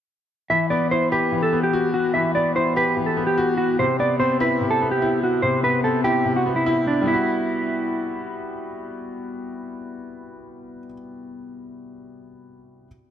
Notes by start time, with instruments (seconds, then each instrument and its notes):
0.50 grand piano E3, clean electric guitar E5
0.70 grand piano B3, clean electric guitar D5
0.91 grand piano E4, clean electric guitar C5
1.12 grand piano G4, clean electric guitar B4
1.32 grand piano E3
1.43 clean electric guitar A4
1.53 grand piano B3
1.63 clean electric guitar G4
1.73 grand piano F#4
1.94 clean electric guitar F#4
2.14 grand piano E3, clean electric guitar E5
2.35 grand piano B3, clean electric guitar D5
2.56 grand piano E4, clean electric guitar C5
2.76 grand piano G4, clean electric guitar B4
2.97 grand piano E3
3.06 clean electric guitar A4
3.17 grand piano B3
3.27 clean electric guitar G4
3.38 grand piano F#4
3.58 clean electric guitar F#4
3.79 grand piano C3, clean electric guitar C5
3.99 grand piano B3, clean electric guitar D5
4.20 grand piano C4, clean electric guitar C5
4.40 grand piano E4, clean electric guitar B4
4.61 grand piano C3
4.71 clean electric guitar A4
4.82 grand piano B3
4.91 clean electric guitar G4
5.02 grand piano E4
5.24 clean electric guitar F#4
5.42 grand piano C3, clean electric guitar C5
5.64 grand piano B3, clean electric guitar B4
5.84 grand piano C4, clean electric guitar A4
6.04 grand piano E4, clean electric guitar G4
6.25 grand piano C3
6.36 clean electric guitar F#4
6.46 grand piano B3
6.56 clean electric guitar E4
6.66 grand piano E4
6.87 clean electric guitar D4
7.02 grand piano G3
7.06 grand piano B3 E4, clean electric guitar E4
7.14 grand piano F#4